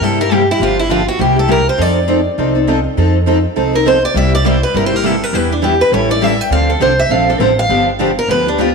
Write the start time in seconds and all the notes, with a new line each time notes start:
0.01 G2 C3 G3 A#3 E4 G4 A4
0.20 A#3 E4 G4 A#4
0.31 C3 G3 A#3 E4 G4
0.51 E4
0.59 G1 D3 F3 A#3 D4 F4 G4
0.79 E4
0.89 D3 F3 A#3 D4 F4 G4
1.08 F#4
1.19 C2 C3 G3 A#3 E4 G4
1.36 A#3 E4 G4 A4
1.48 C3 G3 A#3 E4 G4
1.52 A#4
1.69 C5
1.77 F2 F3 C4 D#4 A4
1.81 D5
2.08 F3 C4 D#4 A4
2.38 C2 F3 C4 D#4 A4
2.55 C4 D#4 A4
2.68 F3 C4 D#4 A4
2.97 F2 F3 C4 D#4 A4
3.27 F3 C4 D#4 A4
3.56 C2 F3 C4 D#4 A4
3.73 C4 D#4 A4 A#4
3.86 F3 C4 D#4 A4 C5
4.05 D5
4.14 C2 C3 G3 A#3 E4 G4 E5
4.35 D5
4.44 C3 G3 A#3 E4 G4 C5
4.63 B4
4.74 G1 C3 G3 A#3 E4 G4 A#4
4.86 C5
4.92 A#3 E4 G4 A#4
5.03 C3 G3 A#3 E4 G4 A4
5.24 A#4
5.33 E2 E3 G3 B3 D4 E4 G4 B4
5.52 D4
5.62 E3 G3 B3 D4 E4 G4 B4
5.81 B4
5.92 A1 E3 G3 C#4 E4 A4 C#5
6.10 C#4 E4 A4 D5
6.21 E3 G3 C#4 E4 A4 E5
6.41 G5
6.50 D2 D3 F3 C4 D4 A4 F5
6.70 A4
6.80 C2 D3 F3 C4 D4 A4 C5
6.99 E5
7.09 A#1 D3 F3 C4 D4 A4 F5
7.28 C4 D4 A4
7.39 A1 D3 F3 C4 D4 A4 C5
7.59 F5
7.69 G1 D3 F3 B3 D4 G4
8.00 D3 F3 B3 D4 G4
8.19 A#4
8.28 D2 D3 F3 B3 D4 G4 B4
8.46 B3 D4 G4
8.58 D3 F3 B3 D4 F4 G4